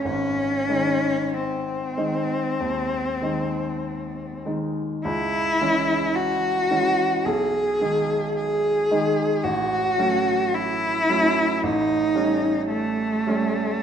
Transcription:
<<
  \new Staff \with { instrumentName = "Cello" } { \time 4/4 \key gis \phrygian \tempo 4 = 54 cis'4 bis2~ bis8 r8 | e'4 fis'4 gis'4 gis'4 | fis'4 e'4 dis'4 a4 | }
  \new Staff \with { instrumentName = "Grand piano" } { \clef bass \time 4/4 \key gis \phrygian gis,,8 <dis gis dis'>4 <dis gis dis'>8 dis,8 <dis gis dis'>4 <dis gis dis'>8 | cis,8 <e gis cis'>4 <e gis cis'>8 b,,8 <dis gis dis'>4 <dis gis dis'>8 | a,,8 <fis a cis'>4 <fis a cis'>8 a,,8 <g a cis'>4 <g a cis'>8 | }
>>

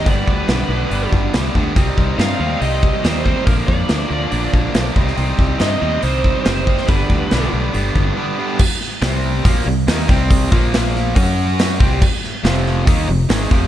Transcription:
<<
  \new Staff \with { instrumentName = "Lead electric guitar" } { \time 4/4 \key c \minor \tempo 4 = 140 d''8 b'2 r4. | r4 f''4 ees''4 c''8 c''8 | bes'8 d''2 r4. | r4 ees''4 c''4 c''4 |
b'4. r2 r8 | r1 | r1 | r1 | }
  \new Staff \with { instrumentName = "Overdriven electric guitar" } { \clef bass \time 4/4 \key c \minor <g, d g b d'>4 <g, d g b d'>8 <g, d g b d'>8 <g, d g b d'>4 <g, d g b d'>8 <g, d g b d'>8 | <c g c' ees'>4 <c g c' ees'>8 <c g c' ees'>8 <c g c' ees'>4 <c g c' ees'>8 <c g c' ees'>8 | <bes, d f bes d'>4 <bes, d f bes d'>8 <bes, d f bes d'>8 <bes, d f bes d'>4 <bes, d f bes d'>8 <c g c' ees'>8 | <c g c' ees'>4 <c g c' ees'>8 <c g c' ees'>8 <c g c' ees'>4 <c g c' ees'>8 <c g c' ees'>8 |
<g, d g b d'>4 <g, d g b d'>8 <g, d g b d'>8 <g, d g b d'>4 <g, d g b d'>8 <g, d g b d'>8 | r4 <c g c'>4 <bes, f bes>8 <c g>8 <ees bes ees'>8 <c g c'>8~ | <c g c'>8 <bes, f bes>4. <fis cis' fis'>4. <c g c'>8 | r4 <f, c f>4 <ees bes ees'>8 <f, c>8 <aes, ees aes>8 <f, c f>8 | }
  \new Staff \with { instrumentName = "Fingered electric bass" } { \clef bass \time 4/4 \key c \minor g,,8 d,8 b,,8 b,,8 g,,8 g,,8 c,8 d,8 | c,8 c,8 g,8 ees,8 c,4 ees,4 | bes,,8 f,8 d,8 d,8 bes,,8 bes,,8 b,,8 c,8 | c,8 c,8 g,8 ees,8 c,4 fis,,4 |
g,,8 d,8 b,,8 b,,8 g,,8 g,,8 r4 | r4 c,4 bes,,8 c,8 ees,8 c,8~ | c,8 bes,,4. fis,4. c,8 | r4 f,,4 ees,8 f,,8 aes,,8 f,,8 | }
  \new DrumStaff \with { instrumentName = "Drums" } \drummode { \time 4/4 <hho bd>8 bd8 <hho sn>4 hho8 bd8 <hho sn>8 bd8 | <hho bd>8 bd8 <hho sn>4 hho8 bd8 <hho sn>16 sn16 bd8 | <hho bd>8 bd8 <hho sn>4 hho8 bd8 <hho sn>8 bd16 sn16 | hho8 bd8 <hho sn>4 hho8 bd8 <hho sn>8 bd16 sn16 |
<hho bd>8 bd8 <hho sn>4 hho8 bd8 r4 | <cymc bd>8 sn8 <hho sn>4 <hho bd>4 <hho sn>8 bd8 | <hho bd>8 bd8 <hho sn>8 sn8 <hho bd>4 <hho sn>8 bd8 | <cymc bd>8 sn8 <hho sn>8 sn8 <hho bd>4 <hho sn>8 bd8 | }
>>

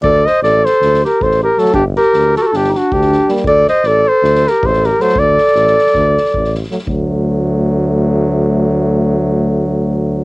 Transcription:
<<
  \new Staff \with { instrumentName = "Flugelhorn" } { \time 9/8 \tempo 4. = 105 d''8 ees''8 d''8 c''4 bes'8 c''8 bes'8 a'8 | g'8 bes'4 a'32 bes'32 a'16 g'16. g'32 fis'8 g'4~ g'32 r16. | d''8 ees''8 d''8 c''4 bes'8 c''8 bes'8 c''8 | d''2.~ d''8 r4 |
r1 r8 | r1 r8 | }
  \new Staff \with { instrumentName = "Clarinet" } { \time 9/8 a'8 c''8 a'8 a'4 g'8 a'8 g'8 fis'8 | d'8 g'4 fis'32 g'32 fis'16 d'16. ees'32 d'8 d'4~ d'32 r16. | a'8 c''8 a'8 a'4 g'8 a'8 g'8 a'8 | a'2.~ a'8 r4 |
r1 r8 | r1 r8 | }
  \new Staff \with { instrumentName = "Euphonium" } { \time 9/8 r1 a8~ | a8 r2. r8 bes8~ | bes8 r2. r8 a8~ | a8 r2. r8 a8 |
a1~ a8~ | a1~ a8 | }
  \new Staff \with { instrumentName = "Trombone" } { \clef bass \time 9/8 r1 fis8~ | fis8 r2. r8 g8~ | g8 r2. r8 fis8~ | fis8 r2. r8 fis8 |
fis1~ fis8~ | fis1~ fis8 | }
  \new Staff \with { instrumentName = "Tuba" } { \clef bass \time 9/8 d,4 a,,4 d,4 a,,4. | g,,4 d,4 g,,4 d,4. | d,4 a,,4 d,4 a,,4. | d,4 a,,4 d,4 a,,4. |
d,1~ d,8~ | d,1~ d,8 | }
  \new DrumStaff \with { instrumentName = "Drums" } \drummode { \time 9/8 bd8 sn8 sn8 sn8 sn16 sn16 sn8 bd16 sn8. sn16 sn16 | bd8 sn8 sn8 sn8 sn16 sn16 sn8 bd16 sn16 sn8 sn16 sn16 | bd8 sn8 sn4 sn16 sn16 sn8 bd16 sn16 sn8 sn16 sn16 | bd8 sn16 sn16 sn16 sn16 sn16 sn16 <bd sn>8 sn16 sn16 bd16 sn16 sn16 sn16 sn16 sn16 |
bd4 r4 r4 r4. | r4 r4 r4 r4. | }
>>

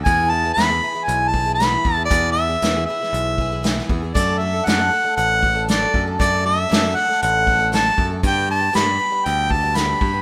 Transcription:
<<
  \new Staff \with { instrumentName = "Harmonica" } { \time 4/4 \key d \major \tempo 4 = 118 gis''8 a''8 b''4 gis''8 a''8 b''4 | d''8 e''4 e''2 r8 | d''8 e''8 fis''4 fis''4 d''8. r16 | d''8 e''4 fis''8 fis''4 a''8. r16 |
g''8 a''8 b''4 g''8 a''8 b''4 | }
  \new Staff \with { instrumentName = "Twelve-string acoustic guitar" } { \time 4/4 \key d \major <e, b, e b e' gis'>8 <e b e' gis'>16 <e b e' gis'>16 <e, b, e b e' gis'>16 <e b e' gis'>16 <e b e' gis'>16 <e b e' gis'>8. <e b e' gis'>16 <e b e' gis'>16 <e, b, e b e' gis'>8 <e b e' gis'>16 <e b e' gis'>16 | <e, b, e b e' gis'>8 <e b e' gis'>16 <e b e' gis'>16 <e, b, e b e' gis'>16 <e b e' gis'>16 <e b e' gis'>16 <e b e' gis'>8. <e b e' gis'>16 <e b e' gis'>16 <e, b, e b e' gis'>8 <e b e' gis'>16 <e b e' gis'>16 | <fis a d' a'>8 <fis a d' a'>16 <a d' a'>16 <fis a d' a'>16 <a d' a'>16 <fis a d' a'>16 <a d' a'>8. <fis a d' a'>16 <a d' a'>16 <fis a d' a'>8 <fis a d' a'>16 <a d' a'>16 | <fis a d' a'>8 <fis a d' a'>16 <a d' a'>16 <fis a d' a'>16 <a d' a'>16 <fis a d' a'>16 <a d' a'>8. <fis a d' a'>16 <a d' a'>16 <fis a d' a'>8 <fis a d' a'>16 <a d' a'>16 |
<g, d g b d' g'>8 <g b d' g'>16 <g b d' g'>16 <g, d g b d' g'>16 <g b d' g'>16 <g b d' g'>16 <g b d' g'>8. <g b d' g'>16 <g b d' g'>16 <g, d g b d' g'>8 <g b d' g'>16 <g b d' g'>16 | }
  \new Staff \with { instrumentName = "Picked electric bass" } { \clef bass \time 4/4 \key d \major e,4 e,8 r8 b,,4. e,8 | e,4 e,8 r8 b,,4. e,8 | fis,4 fis,8 r8 a,,4. fis,8 | fis,4 fis,8 r8 a,,4. fis,8 |
g,4 g,8 r8 d,4. g,8 | }
  \new DrumStaff \with { instrumentName = "Drums" } \drummode { \time 4/4 <hh bd>4 <hh sn>4 hh8 bd8 <hh sn>8 bd8 | <hh bd>4 <hh sn>8. sn16 hh8 bd8 <hh sn>16 sn16 bd8 | <hh bd>4 <hh sn>4 hh8 bd8 <hh sn>8 bd8 | <hh bd>4 <hh sn>8. sn16 hh8 bd8 <hh sn>8 bd8 |
<hh bd>4 <hh sn>4 hh8 bd8 <hh sn>8 bd8 | }
>>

